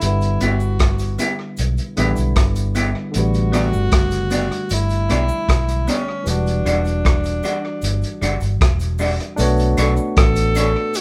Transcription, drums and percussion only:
0.01 closed hi-hat, cabasa
0.22 closed hi-hat
0.41 closed hi-hat, cabasa
0.60 cabasa
0.79 kick, cross-stick, closed hi-hat
0.98 closed hi-hat, cabasa
1.19 closed hi-hat, cabasa
1.57 closed hi-hat, cabasa
1.78 closed hi-hat
1.97 closed hi-hat, cabasa
2.16 closed hi-hat, cabasa
2.36 kick, cross-stick, closed hi-hat
2.55 closed hi-hat, cabasa
2.75 closed hi-hat, cabasa
3.14 closed hi-hat, cabasa
3.35 closed hi-hat
3.53 cross-stick, closed hi-hat, cabasa
3.73 cabasa
3.92 kick, cross-stick, closed hi-hat
4.10 closed hi-hat, cabasa
4.30 closed hi-hat, cabasa
4.52 closed hi-hat
4.69 closed hi-hat, cabasa
4.90 closed hi-hat
5.09 cross-stick, closed hi-hat, cabasa
5.29 cabasa
5.49 kick, cross-stick, closed hi-hat
5.69 closed hi-hat, cabasa
5.87 closed hi-hat, cabasa
6.26 closed hi-hat, cabasa
6.47 closed hi-hat
6.66 closed hi-hat, cabasa
6.86 closed hi-hat, cabasa
7.05 kick, cross-stick, closed hi-hat
7.24 closed hi-hat, cabasa
7.43 closed hi-hat, cabasa
7.82 closed hi-hat, cabasa
8.04 closed hi-hat
8.22 closed hi-hat, cabasa
8.40 closed hi-hat, cabasa
8.61 kick, cross-stick, closed hi-hat
8.80 closed hi-hat, cabasa
8.98 open hi-hat, cabasa
9.20 closed hi-hat
9.37 closed hi-hat, cabasa
9.60 closed hi-hat
9.77 closed hi-hat, cabasa
9.97 cabasa
10.17 kick, cross-stick, closed hi-hat
10.36 closed hi-hat, cabasa
10.55 closed hi-hat, cabasa
10.94 closed hi-hat, cabasa

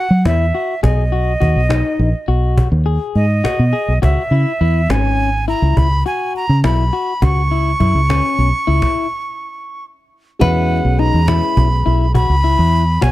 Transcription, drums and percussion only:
0.25 cajon slap
0.55 cajon slap
0.84 cajon bass
1.13 cajon slap
1.41 cajon bass
1.70 cajon slap
2.00 cajon slap
2.29 cajon slap
2.57 cajon bass, cajon slap
2.87 cajon slap
3.16 cajon slap
3.45 cajon slap
3.74 cajon slap
4.03 cajon bass
4.33 cajon slap
4.61 cajon slap
4.90 cajon slap
5.19 cajon slap
5.48 cajon slap
5.77 cajon bass
6.06 cajon slap
6.35 cajon slap
6.64 cajon slap
6.93 cajon slap
7.22 cajon bass
7.51 cajon slap
7.80 cajon bass
8.10 cajon slap
8.39 cajon slap
8.68 cajon slap
8.82 cajon bass, cajon slap
10.41 cajon bass
10.71 cajon slap
11.00 cajon slap
11.28 cajon slap
11.57 cajon bass
11.86 cajon slap
12.15 cajon bass
12.73 cajon slap
13.02 cajon slap

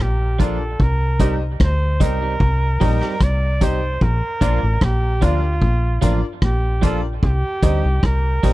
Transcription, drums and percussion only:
0.40 kick, closed hi-hat
0.80 kick
1.20 kick, closed hi-hat
1.60 kick, cross-stick
2.00 kick, closed hi-hat
2.40 kick
2.81 kick, open hi-hat
3.01 cross-stick
3.21 kick, cross-stick, hi-hat pedal
3.61 kick, closed hi-hat
4.01 kick
4.41 kick, closed hi-hat
4.81 kick, cross-stick
5.22 kick, closed hi-hat
5.62 kick
6.02 kick, closed hi-hat
6.42 kick, cross-stick
6.83 kick, closed hi-hat
7.23 kick
7.63 kick, closed hi-hat
8.03 kick, cross-stick
8.43 kick, open hi-hat

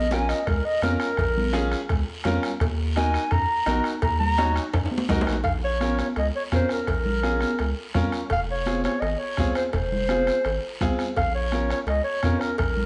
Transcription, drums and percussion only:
0.11 bombo rim, cowbell, high conga, short guiro
0.29 bombo rim, short guiro
0.47 bombo low, bombo rim, cowbell, high conga, long guiro
0.82 bombo rim, cowbell, high conga, low timbale, short guiro
1.00 bombo rim, short guiro
1.17 bombo low, bombo rim, cowbell, high conga, long guiro
1.38 high conga, low conga
1.53 bombo rim, cowbell, high conga, short guiro
1.72 bombo rim, short guiro
1.89 bombo low, bombo rim, cowbell, high conga, long guiro
2.24 bombo rim, cowbell, high conga, low conga, low timbale, short guiro
2.43 bombo rim, short guiro
2.60 bombo low, bombo rim, cowbell, high conga, long guiro
2.96 bombo rim, cowbell, high conga, short guiro
3.14 bombo rim, short guiro
3.31 bombo low, bombo rim, cowbell, high conga, long guiro
3.66 bombo rim, cowbell, high conga, short guiro
3.84 bombo rim, short guiro
4.02 bombo low, bombo rim, cowbell, long guiro
4.20 low conga
4.37 bombo rim, cowbell, high conga, short guiro
4.56 bombo rim, short guiro
4.74 bombo low, bombo rim, cowbell, high conga, high timbale, long guiro
4.86 high timbale
4.91 high conga
4.98 low timbale
5.09 bombo low, bombo rim, cowbell, high conga, low conga, low timbale, short guiro
5.21 low timbale
5.27 bombo rim, short guiro
5.32 low timbale
5.44 bombo low, bombo rim, cowbell, long guiro
5.81 bombo rim, high conga, short guiro
5.99 bombo rim, high conga, short guiro
6.16 bombo rim, cowbell, long guiro
6.52 bombo low, bombo rim, high conga, short guiro
6.69 bombo rim, short guiro
6.87 bombo low, bombo rim, cowbell, long guiro
7.06 low conga
7.23 bombo rim, high conga, short guiro
7.41 bombo rim, high conga, short guiro
7.59 bombo rim, cowbell, long guiro
7.94 bombo low, bombo rim, high conga, low conga, short guiro
8.12 bombo rim, short guiro
8.30 bombo low, bombo rim, cowbell, long guiro
8.66 bombo rim, high conga, short guiro
8.84 bombo rim, high conga, short guiro
9.02 bombo rim, cowbell, long guiro
9.37 bombo low, bombo rim, high conga, low timbale, short guiro
9.55 bombo rim, short guiro
9.73 bombo low, bombo rim, cowbell, long guiro
9.92 low conga
10.09 bombo rim, high conga, short guiro
10.27 bombo rim, short guiro
10.45 bombo rim, cowbell, long guiro
10.81 bombo low, bombo rim, high conga, low conga, low timbale, short guiro
10.99 bombo rim, short guiro
11.16 bombo low, bombo rim, cowbell, long guiro
11.52 bombo rim, high conga, short guiro
11.70 bombo rim, short guiro
11.87 bombo rim, cowbell, long guiro
12.23 bombo low, bombo rim, high conga, short guiro
12.41 bombo rim, short guiro
12.58 bombo low, bombo rim, cowbell, long guiro
12.77 low conga

